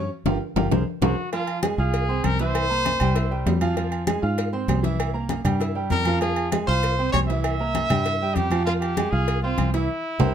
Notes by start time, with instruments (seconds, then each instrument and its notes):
0.25 fingered electric bass G1, grand piano F4 G4 A#4, low bongo, high conga, high timbale
0.56 fingered electric bass G1, grand piano F4 G4 A#4, low bongo, high conga, high timbale
0.71 fingered electric bass C2, grand piano G#4 A#4 C5, low bongo, high conga, high timbale
1.02 fingered electric bass C2, trumpet F#4, grand piano G#4 A#4 C5, low bongo, high conga, high timbale
1.32 grand piano F3 F4 F5, trumpet F4, cowbell, high conga, low agogo
1.47 high conga, low agogo
1.63 grand piano G#3 G#4 G#5, cowbell, high conga, low agogo
1.78 fingered electric bass C2, grand piano F4 F5 F6, trumpet G#4, high conga
1.94 cowbell, high conga, low agogo
2.09 grand piano C4 C5 C6, high conga
2.24 fingered electric bass C2, trumpet A#4, cowbell, high conga, low agogo
2.39 grand piano E3 E4 E5, trumpet C5, cowbell
2.55 cowbell, low agogo
2.70 grand piano A#3 A#4 A#5, high conga
2.85 cowbell, high conga, low agogo
3.00 fingered electric bass C2, grand piano G3 G4 G5, cowbell, high conga, low conga, low agogo
3.15 grand piano E4 E5 E6, cowbell, high conga, low agogo
3.31 grand piano G3 G4 G5, high conga
3.46 fingered electric bass F2, cowbell, high conga, low timbale, low agogo
3.61 grand piano F3 F4 F5, high conga, low agogo
3.77 grand piano F3 F4 F5, cowbell, high conga, low agogo
3.92 high conga, low agogo
4.07 grand piano G#3 G#4 G#5, cowbell, high conga, low agogo
4.22 fingered electric bass G#2, grand piano F4 F5 F6, high conga
4.38 cowbell, high conga, low agogo
4.53 grand piano C4 C5 C6, high conga
4.68 fingered electric bass C2, cowbell, high conga, low timbale, low agogo
4.83 grand piano E3 E4 E5, cowbell, high conga
5.00 cowbell, low agogo
5.13 grand piano A#3 A#4 A#5, high conga
5.29 cowbell, high conga, low agogo
5.45 fingered electric bass G2, grand piano G3 G4 G5, cowbell, high conga, low conga, low agogo
5.60 grand piano E4 E5 E6, cowbell, high conga, low agogo
5.75 grand piano G3 G4 G5, high conga
5.90 fingered electric bass F2, trumpet A#4, cowbell, high conga, low agogo
6.05 grand piano F3 F4 F5, high conga, low agogo
6.21 grand piano F3 F4 F5, trumpet G#4, cowbell, high conga, low agogo
6.36 high conga, low agogo
6.52 grand piano G#3 G#4 G#5, cowbell, high conga, low agogo
6.67 fingered electric bass C2, grand piano F4 F5 F6, trumpet C5
6.83 cowbell, high conga, low agogo
6.99 grand piano C4 C5 C6, high conga
7.12 fingered electric bass C2, trumpet C#5, cowbell, high conga, low timbale, low agogo
7.28 grand piano E3 E4 E5, trumpet E5, cowbell
7.44 cowbell, high conga, low agogo
7.59 grand piano A#3 A#4 A#5, high conga
7.75 cowbell, high conga, low agogo
7.90 fingered electric bass G2, grand piano G3 G4 G5, cowbell, high conga, low conga, low agogo
8.05 grand piano E4 E5 E6, cowbell, high conga, low agogo
8.20 grand piano G3 G4 G5, high conga
8.35 fingered electric bass F2, trumpet G4, cowbell, high conga, low agogo
8.50 grand piano F3 F4 F5, high conga, low agogo
8.65 grand piano F3 F4 F5, trumpet F4, cowbell, high conga, low agogo
8.81 trumpet G4, high conga, low agogo
8.97 grand piano G#3 G#4 G#5, cowbell, high conga, low agogo
9.11 fingered electric bass C2, grand piano F4 F5 F6, trumpet G#4, high conga
9.28 cowbell, high conga, low agogo
9.42 grand piano C4 C5 C6, trumpet F4, high conga
9.58 fingered electric bass C2, cowbell, high conga, low agogo
9.73 grand piano E3 E4 E5, trumpet E4, cowbell
10.20 fingered electric bass C2, grand piano G4 A#4 C5, cowbell, low conga, high timbale